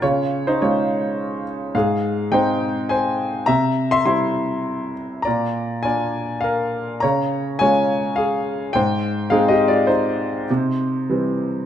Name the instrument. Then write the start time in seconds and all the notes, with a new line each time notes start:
grand piano
0.02 C#3 F4 C#5
0.47 D#4 C5
0.62 G#3 C#4 F4 C#5
1.75 G#2 G#4 F5
2.32 G#3 C4 D#4 C5 G5
2.89 C5 G#5
3.46 C3 E5 A#5
3.91 E5 C6
4.05 G3 C4 E4 E5 C6
5.22 D5 A#5
5.27 A#2
5.83 A#3 D4 F4 D5 G#5
6.41 A#4 F5
7.00 C#3 C#5 A#5
7.59 G#3 C#4 F4 C#5 G#5
8.16 G#4 F5
8.73 G#2 C5 G5
9.30 G#3 C4 D#4 G#4 F5
9.48 G4 D#5
9.68 F4 D5
9.87 D#4 C5
10.50 C3
11.10 E3 G3 C4